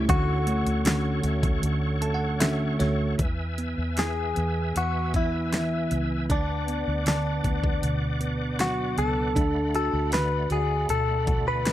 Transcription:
Already playing: A3 E4 C#6
0.08 D2 D3 A3 C#4 F#4 A4 C#5 F#5, kick, closed hi-hat
0.47 A3 C#4 F#4, closed hi-hat
0.66 D2, closed hi-hat
0.85 D3 A3 C#4 F#4, snare, closed hi-hat
1.23 D2 A3 C#4 F#4, closed hi-hat
1.43 kick, closed hi-hat
1.62 D2 D3, closed hi-hat
2.02 A3 A5, closed hi-hat
2.14 F#5
2.40 D3 A3 C#4 F#4 E5, snare, closed hi-hat
2.79 D2 A3 C#4 F#4 C#5, snare, closed hi-hat
3.18 E2 E3 B4 E5 G#5 E6, kick, closed hi-hat
3.58 B3, closed hi-hat
3.78 E2
3.97 E3 G#4, snare, closed hi-hat
4.36 E2 B3, closed hi-hat
4.76 E2 E3 F#4, closed hi-hat
5.14 B3 E4, kick, closed hi-hat
5.52 E3, snare, closed hi-hat
5.91 C#2 B3, closed hi-hat
6.29 D2 D4 D5 F#5 D6, kick, closed hi-hat
6.67 B3, closed hi-hat
6.88 D2
7.06 D3 D4, snare, closed hi-hat
7.43 D2 B3, kick, closed hi-hat
7.64 kick
7.82 D2 B2, closed hi-hat
8.20 B3, closed hi-hat
8.59 F#3 F#4, snare, closed hi-hat
8.98 C#2 B3 A4, closed hi-hat
9.35 D2 A3 D4 B5, kick, closed hi-hat
9.74 F#4 A4, closed hi-hat
9.93 D2
10.12 D3 B4, snare, closed hi-hat
10.50 D2 F#4 G#4, closed hi-hat
10.89 D2 B2 A4, closed hi-hat
11.27 F#4, kick, closed hi-hat
11.48 B4
11.66 A3, snare, closed hi-hat

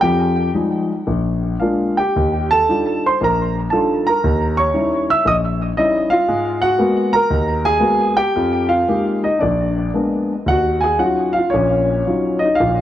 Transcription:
0.01 F2 F3 G4 G5
0.54 F3 G3 G#3 D#4
1.07 A#1
1.60 G#3 A#3 D4 F4 F5
1.97 G4 G5
2.16 D#2
2.51 A4 A5
2.69 G3 D4 D#4 F4
3.06 C5 C6
3.21 A#1 A#4 A#5
3.70 G3 D4 D#4 F4 A4 A5
4.07 A#4 A#5
4.24 D#2
4.57 C#5 C#6
4.74 G3 C#4 D#4 E4
5.10 E5 E6
5.25 A#1 D#5 D#6
5.77 G3 C#4 D#4 E4 D#5
6.10 F4 F5
6.28 G#2 G#3
6.62 F#4 F#5
6.78 G#3 A#3 B3 F#4
7.13 A#4 A#5
7.30 D#2
7.65 G#4 G#5
7.80 G#3 A#3 B3 F#4
8.17 G4 G5
8.36 F2 F3
8.69 F4 F5
8.88 G#3 A#3 D#4 F4 G4
9.23 D#4 D#5
9.39 A#1 D4 D5
9.94 G#3 A#3 B3 D4
10.46 D#2 F#5
10.50 F#4
10.81 G#4 G#5
10.99 F#3 C#4 D#4 F4 F#4 F#5
11.33 F5
11.38 F4
11.50 A#1 C#5
11.54 A#2 C#4
12.07 F#3 C#4 D#4 F4
12.39 D#5
12.45 D#4
12.55 F5
12.60 A#1 A#2 F4

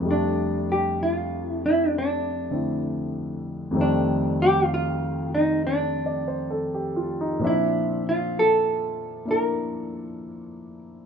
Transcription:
0.00 F2 C3
0.06 G3 A3
0.11 D4
0.72 G4
1.03 F4
1.48 E4
1.66 E4
1.98 D4
2.51 D3 A3 C4 E4
3.71 F2 C3 D#3 G3
3.76 A3 C4
3.81 D4
4.42 G4
4.74 F4
5.35 D#4
5.67 D4
6.06 D5
6.28 C5
6.51 A4
6.74 G4
6.96 F4
7.21 D#4
7.39 A#2 F3 C4
7.44 D4 E4 E5
8.09 F4
8.39 A4
9.25 A#3 D4 E4
9.31 A#4

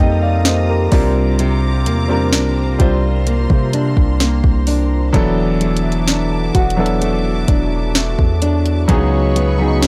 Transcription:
Already playing: F3 G3 A#3 C4 D#4 F4 G4 A4 F5 A#5 D#6
0.00 F2 D#4 D#5 G5
0.22 D5 F5
0.45 A#3 C5 D#5, snare, closed hi-hat
0.69 G4 A#4
0.91 C2 C3 G3 C4 D4 F4 A#4 C5 D6, kick, open hi-hat
1.39 C3, closed hi-hat
1.86 E2 A#3, closed hi-hat
2.08 G3 C4 D4 F4 A#4
2.33 C2 D4, snare, closed hi-hat
2.78 C2 G3 C4 D4 F4 C5 C6, kick, closed hi-hat
3.27 A#3, closed hi-hat
3.50 C3, kick
3.73 D4, closed hi-hat
3.97 C2, kick
4.20 A#3, snare, closed hi-hat
4.44 C2, kick
4.67 D4, open hi-hat
5.13 E1 E3 F#3 B3 D4 E4 F#4 A4 E5 A5 D6, kick, closed hi-hat
5.61 A3, closed hi-hat
5.77 closed hi-hat
5.92 closed hi-hat
6.08 D4, snare, closed hi-hat
6.55 E1 F#4, kick, closed hi-hat
6.70 closed hi-hat
6.77 F#3 B3 D4 E4 A4
6.86 closed hi-hat
7.01 A3, closed hi-hat
7.48 E1 D4, kick, closed hi-hat
7.95 A3, snare, closed hi-hat
8.19 E2, kick
8.42 D4, closed hi-hat, open hi-hat
8.66 closed hi-hat
8.88 C#2 C#3 F#3 B3 C#4 D#4 G#4 D#5 B5 C#6, kick, closed hi-hat
9.36 B3, closed hi-hat
9.58 F#3 B3 C#4 D#4 G#4
9.83 C#4, snare, closed hi-hat

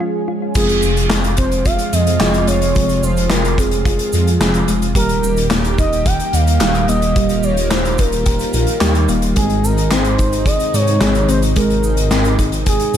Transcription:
Already playing: F3 G#3 C#4 G#4
0.00 F4
0.28 F4
0.55 F1 C3 F3 G#3 C4 F4 G#4, kick, closed hi-hat, crash, cabasa
0.69 closed hi-hat, cabasa
0.83 F1, cabasa
0.97 closed hi-hat, cabasa
1.10 F1 G#3, snare, clap, closed hi-hat, cabasa
1.24 closed hi-hat, cabasa
1.37 F1 C4 C5, kick, closed hi-hat, cabasa
1.52 closed hi-hat, cabasa
1.65 F1 F4 F5, kick, closed hi-hat, cabasa
1.79 closed hi-hat, cabasa
1.93 F2 D#5, closed hi-hat, cabasa
2.07 closed hi-hat, cabasa
2.20 F1 F3 G#3 C4 F4 G#4, snare, clap, closed hi-hat, cabasa
2.34 closed hi-hat, cabasa
2.47 F1 G#3 C#5, closed hi-hat, cabasa
2.62 closed hi-hat, cabasa
2.75 F1 F3 G#3 C4 F4 G#4, kick, closed hi-hat, cabasa
2.89 closed hi-hat, cabasa
3.03 F1 C5, cabasa
3.17 closed hi-hat, cabasa
3.30 F1 G#3 A#4, snare, clap, closed hi-hat, cabasa
3.45 closed hi-hat, cabasa
3.58 F1 C4 G#4, kick, closed hi-hat, cabasa
3.71 closed hi-hat, cabasa
3.85 F1 F4, kick, closed hi-hat, cabasa
3.99 closed hi-hat, cabasa
4.13 F2, closed hi-hat, cabasa
4.27 closed hi-hat, cabasa
4.41 F1 F3 G#3 C4 F4 G#4, snare, clap, closed hi-hat, cabasa
4.54 closed hi-hat, cabasa
4.68 F1 G#3, closed hi-hat, cabasa
4.82 closed hi-hat, cabasa
4.95 D#1 D#3 G3 A#3 D#4 G4 A#4, kick, closed hi-hat, cabasa
5.09 closed hi-hat, cabasa
5.23 D#1, cabasa
5.37 closed hi-hat, cabasa
5.50 D#1 A#3, snare, clap, closed hi-hat, cabasa
5.64 closed hi-hat, cabasa
5.78 D#1 D#4 D#5, kick, closed hi-hat, cabasa
5.93 closed hi-hat, cabasa
6.06 D#1 G4 G5, kick, closed hi-hat, cabasa
6.20 closed hi-hat, cabasa
6.33 D#2 F5, closed hi-hat, cabasa
6.47 closed hi-hat, cabasa
6.60 D#1 G3 A#3 D#4 G4, snare, clap, closed hi-hat, cabasa
6.75 closed hi-hat, cabasa
6.88 D#1 A#3 D#5, closed hi-hat, cabasa
7.02 closed hi-hat, cabasa
7.16 D#1 G3 A#3 D#4 F4 G4, kick, closed hi-hat, cabasa
7.29 closed hi-hat, cabasa
7.43 D#1 C#5, cabasa
7.57 closed hi-hat, cabasa
7.71 D#1 A#3 C5, snare, clap, closed hi-hat, cabasa
7.85 closed hi-hat, cabasa
7.98 D#1 D#4 A#4, kick, closed hi-hat, cabasa
8.12 closed hi-hat, cabasa
8.26 D#1 G4, kick, closed hi-hat, cabasa
8.39 closed hi-hat, cabasa
8.53 A#1, closed hi-hat, cabasa
8.67 closed hi-hat, cabasa
8.81 D#2 G3 A#3 D#4 G4, snare, clap, closed hi-hat, cabasa
8.95 closed hi-hat, cabasa
9.09 D#1 A#3, closed hi-hat, cabasa
9.22 closed hi-hat, cabasa
9.36 G#1 C3 G#3 C4 D#4 G#4, kick, closed hi-hat, cabasa
9.50 closed hi-hat, cabasa
9.64 G#1 A#4, cabasa
9.78 closed hi-hat, cabasa
9.91 G#1 C4 C5, snare, clap, closed hi-hat, cabasa
10.04 closed hi-hat, cabasa
10.18 G#1 D#4, kick, closed hi-hat, cabasa
10.33 closed hi-hat, cabasa
10.46 G#1 G#4 D#5, kick, closed hi-hat, cabasa
10.60 closed hi-hat, cabasa
10.74 G#2 C#5, closed hi-hat, cabasa
10.87 closed hi-hat, cabasa
11.01 G#1 G#3 C4 D#4 G#4, snare, clap, closed hi-hat, cabasa
11.15 closed hi-hat, cabasa
11.28 G#1 C4 C5, closed hi-hat, cabasa
11.42 closed hi-hat, cabasa
11.56 G#1 G#3 C4 D#4 G#4 A#4, kick, closed hi-hat, cabasa
11.70 closed hi-hat, cabasa
11.83 G#1, cabasa
11.97 closed hi-hat, cabasa
12.11 G#1 C4, snare, clap, closed hi-hat, cabasa
12.24 closed hi-hat, cabasa
12.39 G#1 D#4, kick, closed hi-hat, cabasa
12.52 closed hi-hat, cabasa
12.66 G#1 G#4, kick, closed hi-hat, cabasa
12.80 closed hi-hat, cabasa
12.94 G#2, cabasa

